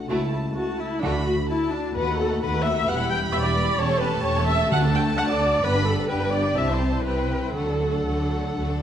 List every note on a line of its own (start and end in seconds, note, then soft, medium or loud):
0.00 1.79 A3 soft
0.00 0.10 F#5 soft
0.09 0.48 C#2 medium
0.09 0.49 C#2 medium
0.09 0.32 A3 medium
0.09 0.32 E4 soft
0.09 1.03 E4 medium
0.09 0.18 F#4 medium
0.09 0.55 A5 medium
0.32 0.40 E4 medium
0.56 0.79 F#4 medium
0.56 1.02 A5 medium
0.79 1.03 E4 medium
1.02 1.42 D2 medium
1.02 1.69 D3 medium
1.02 1.25 A3 medium
1.02 1.26 D4 medium
1.02 1.25 F#4 medium
1.02 2.88 F#4 medium
1.02 1.49 B5 medium
1.26 1.34 F#4 medium
1.49 1.72 E4 medium
1.49 1.96 A5 medium
1.72 1.96 D4 medium
1.95 2.37 D#2 medium
1.95 2.86 A3 medium
1.95 2.07 B3 soft
1.95 2.07 F#4 soft
1.95 2.18 B4 medium
1.95 2.42 F#5 medium
2.08 2.19 A3 soft
2.08 2.20 D#4 soft
2.19 2.31 B3 medium
2.19 2.31 F#4 medium
2.19 2.42 A4 medium
2.31 2.43 A3 medium
2.31 2.43 D#4 medium
2.42 2.83 D#2 medium
2.42 2.53 B3 medium
2.42 2.53 F#4 soft
2.42 2.65 B4 medium
2.42 2.88 F#5 medium
2.54 2.65 A3 soft
2.54 2.65 D#4 soft
2.64 2.76 B3 soft
2.64 2.76 F#4 medium
2.64 2.87 E5 loud
2.75 2.88 A3 medium
2.75 2.87 D#4 medium
2.86 3.28 E1 medium
2.86 3.29 E2 medium
2.86 3.80 G3 medium
2.86 2.98 B3 medium
2.86 2.98 G4 medium
2.86 4.68 G4 medium
2.86 3.11 F#5 medium
2.86 3.78 B5 medium
2.98 3.10 G3 medium
2.98 3.10 E4 medium
3.10 3.22 B3 medium
3.10 3.22 G4 medium
3.10 3.18 G5 medium
3.21 3.33 G3 medium
3.21 3.33 E4 medium
3.33 3.74 E1 medium
3.33 3.74 E2 medium
3.33 3.44 B3 medium
3.33 3.44 G4 medium
3.33 3.37 E5 loud
3.44 3.56 G3 medium
3.44 3.56 E4 medium
3.44 3.78 D5 loud
3.55 3.67 B3 medium
3.55 3.67 G4 medium
3.67 3.79 G3 medium
3.67 3.79 E4 medium
3.78 4.20 E1 medium
3.78 4.20 E2 medium
3.78 5.61 A3 medium
3.78 3.89 C#4 medium
3.78 3.90 G4 medium
3.78 4.02 C#5 loud
3.78 4.70 A5 medium
3.90 4.02 A3 medium
3.90 4.02 A4 medium
4.01 4.13 C#4 medium
4.01 4.13 G4 medium
4.01 4.25 B4 medium
4.13 4.25 A3 medium
4.13 4.25 A4 medium
4.24 4.66 E1 medium
4.24 4.66 E2 medium
4.24 4.36 C#4 medium
4.24 4.36 G4 medium
4.24 4.48 C#5 loud
4.36 4.48 A3 medium
4.36 4.48 A4 medium
4.47 4.60 C#4 medium
4.47 4.60 G4 medium
4.47 4.71 E5 loud
4.59 4.69 A3 medium
4.59 4.71 A4 medium
4.70 5.13 D2 medium
4.70 5.38 D3 medium
4.70 4.82 A3 medium
4.70 5.63 D4 medium
4.70 4.82 F#4 medium
4.70 4.80 F#5 loud
4.70 5.62 A5 medium
4.83 4.95 D4 medium
4.83 4.95 A4 medium
4.94 5.07 A3 medium
4.94 5.07 F#4 medium
4.94 5.03 G5 medium
5.06 5.18 D4 medium
5.06 5.18 A4 soft
5.18 5.59 D2 medium
5.18 5.30 A3 medium
5.18 5.30 F#4 medium
5.18 5.23 F#5 loud
5.29 5.41 D4 medium
5.29 5.42 A4 medium
5.29 5.64 D5 loud
5.41 5.53 A3 medium
5.41 5.53 F#4 medium
5.53 5.64 D4 medium
5.53 5.65 A4 medium
5.64 6.05 G1 medium
5.64 6.05 G2 medium
5.64 6.07 G3 medium
5.64 5.75 B3 medium
5.64 6.07 D4 medium
5.64 5.75 G4 medium
5.64 5.88 B4 loud
5.64 6.09 B5 medium
5.76 5.87 D4 soft
5.76 5.88 B4 soft
5.87 5.99 B3 medium
5.87 5.99 G4 medium
5.87 6.11 A4 medium
5.99 6.10 D4 soft
5.99 6.10 B4 soft
6.09 6.52 G1 medium
6.09 6.51 G2 medium
6.09 6.55 G3 medium
6.09 6.21 B3 medium
6.09 6.56 D4 medium
6.09 6.21 G4 soft
6.09 6.34 B4 medium
6.09 6.55 G5 medium
6.21 6.33 D4 medium
6.21 6.33 B4 soft
6.33 6.45 B3 medium
6.33 6.45 G4 medium
6.33 6.57 D5 medium
6.44 6.56 D4 soft
6.44 6.57 B4 medium
6.56 7.00 C2 medium
6.56 6.99 C3 medium
6.56 7.53 G3 medium
6.56 6.68 C4 medium
6.56 7.55 E4 medium
6.56 6.68 G4 medium
6.56 6.69 E5 medium
6.56 7.05 A5 medium
6.68 6.81 E4 medium
6.68 6.81 C5 soft
6.68 7.06 C5 medium
6.81 6.93 C4 soft
6.81 6.93 G4 soft
6.92 7.05 E4 soft
6.92 7.05 C5 soft
7.05 7.49 C2 medium
7.05 7.49 C3 medium
7.05 7.17 C4 soft
7.05 7.17 G4 soft
7.05 7.54 B4 medium
7.05 7.54 G5 medium
7.17 7.30 E4 soft
7.17 7.30 C5 soft
7.30 7.42 C4 soft
7.30 7.42 G4 soft
7.43 7.55 E4 soft
7.43 7.55 C5 soft
7.55 8.00 D2 medium
7.55 8.00 D3 medium
7.55 8.82 F#3 medium
7.55 7.67 A3 soft
7.55 8.82 D4 medium
7.55 7.67 F#4 soft
7.55 8.82 A4 medium
7.55 8.82 F#5 medium
7.68 7.81 D4 soft
7.68 7.81 A4 soft
7.81 7.94 A3 soft
7.81 7.94 F#4 soft
7.94 8.06 D4 soft
7.94 8.06 A4 soft
8.06 8.51 D2 medium
8.06 8.50 D3 medium
8.06 8.18 A3 soft
8.06 8.18 F#4 soft
8.19 8.31 D4 soft
8.19 8.32 A4 soft
8.31 8.44 A3 soft
8.31 8.44 F#4 soft
8.44 8.57 D4 soft
8.44 8.57 A4 soft
8.56 8.82 D2 medium
8.56 8.82 D3 soft
8.56 8.68 A3 soft
8.56 8.68 F#4 soft
8.69 8.82 D4 soft
8.69 8.82 A4 soft